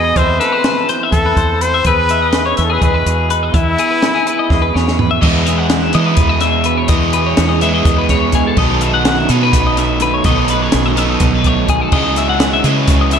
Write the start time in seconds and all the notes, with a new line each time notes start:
Already playing: E2 B2 E3 G#3 D#4 G#4 D#5
0.04 D#5
0.16 E2 E3 A3 C5 E5, kick, closed hi-hat
0.20 C4 E4
0.40 C4 A4 B4, snare, closed hi-hat
0.52 C5
0.64 snare, closed hi-hat
0.78 A4
0.89 E3 C5, snare, closed hi-hat
1.03 E5
1.12 E2 A3 A4, kick, closed hi-hat
1.26 B4
1.36 E2 C5, kick, closed hi-hat
1.61 C4 B4 C5, closed hi-hat
1.74 E5
1.85 E2 G#4 B4, kick, closed hi-hat
2.09 D#4 E5, closed hi-hat
2.22 D#5
2.33 snare, closed hi-hat
2.46 C#5
2.57 E2 E3 B4 E5, snare, closed hi-hat
2.64 A4
2.70 G#4 B4
2.82 E2 G#3 B4, kick, closed hi-hat
2.94 B4
3.06 E2 B2 G#4, closed hi-hat
3.30 D#4 B4, closed hi-hat
3.43 D#5
3.54 E2 B3 E4 E5, kick, closed hi-hat
3.78 B3 G#4, closed hi-hat
3.91 B4
4.02 snare, closed hi-hat
4.15 G#4
4.26 E3 B4, closed hi-hat
4.39 D#5
4.50 E2 G#3, kick, snare
4.62 B4
4.73 E2 B2 C#5, snare
4.88 snare
4.98 B3 B4, floor tom
5.11 E5
5.21 E2 E3 G#3 B3 E4 D#5, kick, crash
5.46 G#4 E5, closed hi-hat
5.58 F#5
5.70 snare, closed hi-hat
5.83 E5
5.93 E3 G#3 B3 E4 D#5, closed hi-hat
5.97 E3
6.06 B4
6.17 E2, kick, closed hi-hat
6.29 D#5
6.41 G#3 E5, snare, closed hi-hat
6.64 B2 B4, closed hi-hat
6.77 C#5
6.88 E2 E3 G#3 B3 E4 D#5, kick, closed hi-hat
7.13 G#4 B4, closed hi-hat
7.26 C#5
7.37 E2, snare, closed hi-hat
7.49 D#5
7.61 E3 G#3 B3 E4 E5, closed hi-hat
7.74 D#5
7.85 E2, kick, closed hi-hat
7.98 B4
8.09 G#3 C#5, kick, snare, closed hi-hat
8.32 B2 G#4, kick, snare, closed hi-hat
8.47 A4
8.57 B1 B2 D#3 F#3 B3 D#4 A4 D#5, kick, crash
8.81 E5, closed hi-hat
8.94 F#5
9.05 snare, closed hi-hat
9.19 E5
9.29 B2 D#3 F#3 B3 D#4 A4 D#5, closed hi-hat
9.43 B4
9.53 B1, kick, closed hi-hat
9.67 D#5
9.77 A3 E5, snare, closed hi-hat
10.00 F#2 B4, snare, closed hi-hat
10.14 C#5
10.24 B1 B2 D#3 F#3 B3 D#4 A4 D#5, kick, closed hi-hat
10.48 B4, closed hi-hat
10.62 C#5
10.72 B1, snare, closed hi-hat
10.86 D#5
10.96 B2 D#3 F#3 B3 D#4 A4 E5, snare, closed hi-hat
11.10 D#5
11.20 B1, kick, snare, closed hi-hat
11.35 B4
11.44 A3 C#5, kick, closed hi-hat
11.68 F#2 G#4, kick, closed hi-hat
11.81 A4
11.92 C#2 C#3 G#3 C#4 D#4 E4 G#4 D#5, kick, crash
12.16 F#4 E5, snare, closed hi-hat
12.29 F#5
12.40 snare, closed hi-hat
12.53 E5
12.63 C#3 E3 G#3 C#4 E4 G#4 D#5, closed hi-hat
12.67 C#3
12.78 B4
12.88 C#2, kick, closed hi-hat
13.01 D#5
13.10 B3 E5, closed hi-hat